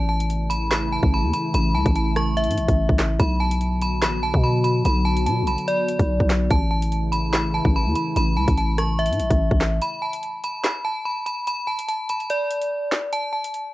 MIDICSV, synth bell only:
0, 0, Header, 1, 2, 480
1, 0, Start_track
1, 0, Tempo, 413793
1, 1786, Time_signature, 4, 2, 24, 8
1, 15936, End_track
2, 0, Start_track
2, 0, Title_t, "Synth bell"
2, 0, Program_c, 0, 98
2, 103, Note_on_c, 0, 81, 81
2, 295, Note_off_c, 0, 81, 0
2, 579, Note_on_c, 0, 83, 97
2, 773, Note_off_c, 0, 83, 0
2, 823, Note_on_c, 0, 83, 86
2, 1015, Note_off_c, 0, 83, 0
2, 1073, Note_on_c, 0, 81, 79
2, 1262, Note_off_c, 0, 81, 0
2, 1320, Note_on_c, 0, 83, 92
2, 1506, Note_off_c, 0, 83, 0
2, 1550, Note_on_c, 0, 83, 86
2, 1740, Note_off_c, 0, 83, 0
2, 1793, Note_on_c, 0, 83, 109
2, 1982, Note_off_c, 0, 83, 0
2, 2025, Note_on_c, 0, 81, 83
2, 2217, Note_off_c, 0, 81, 0
2, 2271, Note_on_c, 0, 81, 76
2, 2460, Note_off_c, 0, 81, 0
2, 2512, Note_on_c, 0, 85, 85
2, 2701, Note_off_c, 0, 85, 0
2, 2747, Note_on_c, 0, 76, 88
2, 3661, Note_off_c, 0, 76, 0
2, 3708, Note_on_c, 0, 83, 92
2, 3899, Note_off_c, 0, 83, 0
2, 3946, Note_on_c, 0, 81, 83
2, 4138, Note_off_c, 0, 81, 0
2, 4433, Note_on_c, 0, 83, 88
2, 4622, Note_off_c, 0, 83, 0
2, 4671, Note_on_c, 0, 83, 87
2, 4860, Note_off_c, 0, 83, 0
2, 4906, Note_on_c, 0, 81, 86
2, 5097, Note_off_c, 0, 81, 0
2, 5146, Note_on_c, 0, 83, 90
2, 5337, Note_off_c, 0, 83, 0
2, 5383, Note_on_c, 0, 83, 90
2, 5576, Note_off_c, 0, 83, 0
2, 5635, Note_on_c, 0, 83, 106
2, 5823, Note_off_c, 0, 83, 0
2, 5859, Note_on_c, 0, 81, 90
2, 6053, Note_off_c, 0, 81, 0
2, 6105, Note_on_c, 0, 81, 83
2, 6297, Note_off_c, 0, 81, 0
2, 6350, Note_on_c, 0, 83, 89
2, 6540, Note_off_c, 0, 83, 0
2, 6586, Note_on_c, 0, 74, 91
2, 7500, Note_off_c, 0, 74, 0
2, 7548, Note_on_c, 0, 81, 99
2, 7738, Note_off_c, 0, 81, 0
2, 7781, Note_on_c, 0, 81, 78
2, 7974, Note_off_c, 0, 81, 0
2, 8259, Note_on_c, 0, 83, 94
2, 8453, Note_off_c, 0, 83, 0
2, 8501, Note_on_c, 0, 83, 84
2, 8694, Note_off_c, 0, 83, 0
2, 8748, Note_on_c, 0, 81, 79
2, 8939, Note_off_c, 0, 81, 0
2, 9000, Note_on_c, 0, 83, 94
2, 9186, Note_off_c, 0, 83, 0
2, 9231, Note_on_c, 0, 83, 83
2, 9421, Note_off_c, 0, 83, 0
2, 9475, Note_on_c, 0, 83, 108
2, 9663, Note_off_c, 0, 83, 0
2, 9706, Note_on_c, 0, 81, 81
2, 9897, Note_off_c, 0, 81, 0
2, 9950, Note_on_c, 0, 81, 78
2, 10140, Note_off_c, 0, 81, 0
2, 10192, Note_on_c, 0, 85, 83
2, 10381, Note_off_c, 0, 85, 0
2, 10426, Note_on_c, 0, 76, 88
2, 11340, Note_off_c, 0, 76, 0
2, 11390, Note_on_c, 0, 83, 92
2, 11580, Note_off_c, 0, 83, 0
2, 11623, Note_on_c, 0, 81, 75
2, 11816, Note_off_c, 0, 81, 0
2, 12110, Note_on_c, 0, 83, 83
2, 12300, Note_off_c, 0, 83, 0
2, 12349, Note_on_c, 0, 83, 84
2, 12539, Note_off_c, 0, 83, 0
2, 12582, Note_on_c, 0, 81, 85
2, 12775, Note_off_c, 0, 81, 0
2, 12823, Note_on_c, 0, 83, 87
2, 13015, Note_off_c, 0, 83, 0
2, 13063, Note_on_c, 0, 83, 90
2, 13256, Note_off_c, 0, 83, 0
2, 13311, Note_on_c, 0, 83, 103
2, 13500, Note_off_c, 0, 83, 0
2, 13540, Note_on_c, 0, 81, 86
2, 13734, Note_off_c, 0, 81, 0
2, 13786, Note_on_c, 0, 81, 78
2, 13978, Note_off_c, 0, 81, 0
2, 14032, Note_on_c, 0, 83, 87
2, 14221, Note_off_c, 0, 83, 0
2, 14270, Note_on_c, 0, 74, 87
2, 15182, Note_off_c, 0, 74, 0
2, 15228, Note_on_c, 0, 81, 96
2, 15418, Note_off_c, 0, 81, 0
2, 15459, Note_on_c, 0, 81, 79
2, 15653, Note_off_c, 0, 81, 0
2, 15936, End_track
0, 0, End_of_file